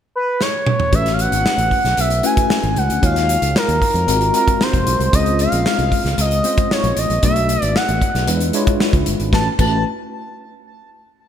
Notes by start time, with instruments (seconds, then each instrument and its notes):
0.16 analog synth lead B4
0.41 analog synth lead C#5, snare
0.67 mid tom
0.80 floor tom
0.92 fingered electric bass A1, tine electric piano A3 C#4 E4 F#4 B4, analog synth lead E5, kick, closed hi-hat
1.06 snare, closed hi-hat
1.13 analog synth lead F5
1.19 analog synth lead F#5, closed hi-hat
1.32 fingered electric bass G#1, closed hi-hat
1.46 snare
1.58 fingered electric bass A1, closed hi-hat
1.71 kick, open hi-hat
1.84 fingered electric bass B1, snare, closed hi-hat
1.97 fingered electric bass B1, analog synth lead E5, closed hi-hat
2.10 closed hi-hat
2.23 tine electric piano A3 C#4 E4 F#4 B4, analog synth lead G#5, closed hi-hat
2.37 kick, closed hi-hat
2.50 snare
2.63 fingered electric bass G#1, closed hi-hat
2.76 fingered electric bass C#2, analog synth lead F#5, closed hi-hat
2.90 fingered electric bass D2, closed hi-hat
3.01 fingered electric bass D#2, tine electric piano G#3 D#4 F4 F#4 C#5, analog synth lead F5, kick, closed hi-hat
3.16 snare, closed hi-hat
3.29 closed hi-hat
3.42 fingered electric bass C#2, closed hi-hat
3.56 analog synth lead A#4, snare
3.68 fingered electric bass D#2, closed hi-hat
3.82 kick, open hi-hat
3.94 fingered electric bass F2, closed hi-hat
4.07 fingered electric bass G#1, tine electric piano G#3 C4 F4 F#4 A#4, closed hi-hat
4.21 closed hi-hat
4.33 tine electric piano G#3 C4 F4 F#4 A#4, analog synth lead A#4, closed hi-hat
4.48 kick, closed hi-hat
4.61 analog synth lead C5, snare
4.73 fingered electric bass F1, kick, closed hi-hat
4.87 fingered electric bass B1, closed hi-hat
5.00 fingered electric bass C2, closed hi-hat
5.12 fingered electric bass C#2, tine electric piano G#3 C4 C#4 F4 C5, analog synth lead D#5, kick, closed hi-hat
5.26 closed hi-hat
5.39 analog synth lead F5, closed hi-hat
5.52 fingered electric bass A#1, closed hi-hat
5.66 snare
5.79 fingered electric bass C2, closed hi-hat
5.92 kick, open hi-hat
6.05 fingered electric bass C#2, snare, closed hi-hat
6.18 fingered electric bass C#2, analog synth lead D#5, closed hi-hat
6.31 closed hi-hat
6.44 tine electric piano G#3 C4 C#4 F4 C5, closed hi-hat
6.57 kick, closed hi-hat
6.71 analog synth lead C#5, snare
6.84 fingered electric bass A#1, closed hi-hat
6.97 fingered electric bass A1, analog synth lead D#5, closed hi-hat
7.10 fingered electric bass A#1, closed hi-hat
7.22 fingered electric bass B1, tine electric piano A3 B3 D4 F#4 B4, analog synth lead E5, kick, closed hi-hat
7.36 closed hi-hat
7.49 closed hi-hat
7.62 fingered electric bass G#1, analog synth lead D5, closed hi-hat
7.76 analog synth lead F#5, snare
7.89 fingered electric bass A1, closed hi-hat
8.01 kick, closed hi-hat
8.15 fingered electric bass B1, snare, closed hi-hat
8.27 fingered electric bass E2, tine electric piano G#3 D4 E4 F4 B4, closed hi-hat
8.40 closed hi-hat
8.53 tine electric piano G#3 D4 E4 F4 C#5, closed hi-hat
8.67 kick, closed hi-hat
8.80 tine electric piano B5, snare
8.93 fingered electric bass C#2, kick, closed hi-hat
9.06 fingered electric bass G1, closed hi-hat
9.20 fingered electric bass G#1, closed hi-hat
9.33 fingered electric bass A1, tine electric piano A3 C#4 E4 F#4 B4, analog synth lead A5, kick, snare
9.59 fingered electric bass A1, tine electric piano A3 C#4 E4 F#4 B4, analog synth lead A5, kick, crash